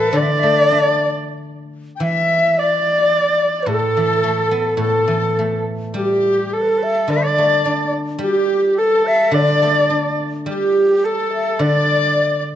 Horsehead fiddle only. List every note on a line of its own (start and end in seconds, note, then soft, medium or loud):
0.00 0.18 A4 medium
0.17 1.16 D5 medium
2.03 2.60 E5 medium
2.59 3.69 D5 medium
3.68 4.79 A4 medium
4.80 5.63 A4 medium
5.96 6.54 G4 medium
6.53 7.12 A4 medium
7.10 7.94 D5 medium
8.22 8.79 G4 medium
8.78 9.35 A4 medium
9.34 10.19 D5 medium
10.48 11.06 G4 medium
11.04 11.61 A4 medium
11.59 12.43 D5 medium